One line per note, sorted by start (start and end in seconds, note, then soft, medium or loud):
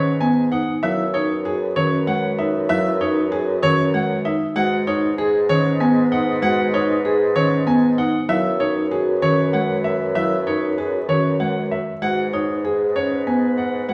0.00 0.73 G#2 medium
0.00 0.63 B4 medium
0.21 0.41 B3 medium
0.21 0.41 G#5 medium
0.52 0.72 D#4 medium
0.52 0.72 F#5 medium
0.83 4.46 F#2 medium
0.83 1.03 F#3 medium
0.83 1.03 E4 medium
0.83 4.37 B4 medium
0.83 1.03 E5 medium
1.14 1.35 D#4 medium
1.14 1.34 C#5 medium
1.45 1.66 F#4 medium
1.45 1.65 G#4 medium
1.76 1.97 D#3 medium
1.76 1.97 C#4 medium
1.76 1.96 C#5 medium
2.07 2.28 G#3 medium
2.07 2.28 F#5 medium
2.39 2.59 D#4 medium
2.39 2.59 E5 medium
2.69 2.90 F#3 medium
2.69 2.90 E4 medium
2.69 2.90 E5 medium
3.01 3.21 D#4 medium
3.01 3.21 C#5 medium
3.32 3.52 F#4 medium
3.32 3.52 G#4 medium
3.63 3.83 D#3 medium
3.63 3.83 C#4 medium
3.63 3.83 C#5 medium
3.94 4.14 G#3 medium
3.94 4.14 F#5 medium
4.25 4.45 D#4 medium
4.25 4.45 E5 medium
4.56 8.19 G#2 medium
4.56 4.76 G#3 medium
4.56 4.76 F#4 medium
4.56 8.10 B4 medium
4.56 4.76 F#5 medium
4.87 5.07 D#4 medium
4.87 5.07 C#5 medium
5.18 5.39 G#4 medium
5.49 5.70 D#3 medium
5.49 5.70 C#4 medium
5.49 5.70 C#5 medium
5.80 6.01 B3 medium
5.80 6.01 G#5 medium
6.12 6.32 D#4 medium
6.12 6.32 F#5 medium
6.42 6.63 G#3 medium
6.42 6.63 F#4 medium
6.42 6.63 F#5 medium
6.74 6.94 D#4 medium
6.74 6.94 C#5 medium
7.05 7.25 G#4 medium
7.36 7.56 D#3 medium
7.36 7.56 C#4 medium
7.36 7.56 C#5 medium
7.67 7.87 B3 medium
7.67 7.87 G#5 medium
7.98 8.18 D#4 medium
7.98 8.18 F#5 medium
8.29 11.92 F#2 medium
8.29 8.49 F#3 medium
8.29 8.49 E4 medium
8.29 11.82 B4 medium
8.29 8.49 E5 medium
8.60 8.81 D#4 medium
8.60 8.80 C#5 medium
8.91 9.12 F#4 medium
8.91 9.12 G#4 medium
9.22 9.43 D#3 medium
9.22 9.43 C#4 medium
9.22 9.43 C#5 medium
9.53 9.74 G#3 medium
9.53 9.74 F#5 medium
9.84 10.05 E5 medium
10.15 10.36 F#3 medium
10.15 10.36 E4 medium
10.15 10.36 E5 medium
10.47 10.67 D#4 medium
10.47 10.67 C#5 medium
10.78 10.98 F#4 medium
10.78 10.98 G#4 medium
11.09 11.29 D#3 medium
11.09 11.29 C#4 medium
11.09 11.29 C#5 medium
11.40 11.60 G#3 medium
11.40 11.60 F#5 medium
11.71 11.91 E5 medium
12.02 13.94 G#2 medium
12.02 12.22 G#3 medium
12.02 12.22 F#4 medium
12.02 13.94 B4 medium
12.02 12.22 F#5 medium
12.33 12.54 D#4 medium
12.33 12.53 C#5 medium
12.64 12.85 G#4 medium
12.96 13.16 C#4 medium
12.96 13.16 C#5 medium
13.27 13.47 B3 medium
13.27 13.47 G#5 medium
13.58 13.78 F#5 medium
13.89 13.94 G#3 medium
13.89 13.94 F#4 medium
13.89 13.94 F#5 medium